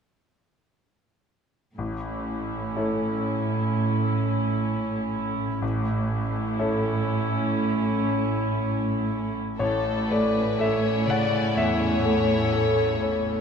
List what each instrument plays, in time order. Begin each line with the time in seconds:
1.78 grand piano A1, cello section A2, viola section C#4 E4
2.76 grand piano C#4 E4 A4
5.62 grand piano A1, cello section A2, viola section C#4 E4
6.59 grand piano C#4 E4 A4
9.59 grand piano A1 C#5, cello section A2, violin section C#4 E4 A4
10.09 grand piano A3 D5, violin section B4
10.58 grand piano A4 E5, violin section C#5
11.06 grand piano C#3 F#5, violin section D5
11.55 grand piano E2 E5, viola section A4, violin section C#5
12.05 grand piano A3
12.53 grand piano A4
13.02 grand piano C#4